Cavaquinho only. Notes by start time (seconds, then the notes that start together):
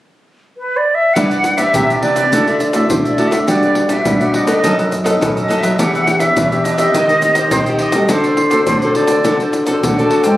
1.15 E4 G4 B4 D5
1.31 G4 B4 D5
1.45 muted cavaquinho stroke
1.57 G4 B4 D5
1.90 G4 B4 D5
2.03 E4 G4 B4 D5
2.17 G4 B4 D5
2.33 F#4 A4 D5 E5
2.48 A4 D5 E5
2.61 muted cavaquinho stroke
2.74 A4 D5 E5
3.04 A4 D5 E5
3.18 F#4 A4 D5 E5
3.31 A4 D5 E5
3.48 F#4 G4 B4 D5
3.63 G4 B4 D5
3.77 muted cavaquinho stroke
3.90 G4 B4 D5
4.21 G4 B4 D5
4.34 F#4 G4 B4 D5
4.47 G4 B4 D5
4.63 D#4 A4 B4 D#5
4.78 A4 B4 D#5
4.91 muted cavaquinho stroke
5.04 A4 B4 D#5
5.36 A4 B4 D#5
5.48 D#4 A4 B4 D#5
5.63 A4 B4 D#5
5.78 D4 G4 B4 E5
5.94 G4 B4 E5
6.07 muted cavaquinho stroke
6.20 G4 B4 E5
6.51 G4 B4 E5
6.64 D4 G4 B4 E5
6.78 G4 B4 E5
6.94 D#4 G4 C5 D#5
7.10 G4 C5 D#5
7.22 muted cavaquinho stroke
7.35 G4 C5 D#5
7.66 G4 C5 D#5
7.79 D#4 G4 C5 D#5
7.93 G4 C5 D#5
8.08 F#4 A4 C5 D5
8.24 A4 C5 D5
8.38 muted cavaquinho stroke
8.50 A4 C5 D5
8.82 A4 C5 D5
8.94 F#4 A4 C5 D5
9.08 A4 C5 D5
9.24 F#4 A4 C5 D5
9.39 A4 C5 D5
9.52 muted cavaquinho stroke
9.66 A4 C5 D5
9.97 A4 C5 D5
10.10 F#4 A4 C5 D5
10.23 A4 C5 D5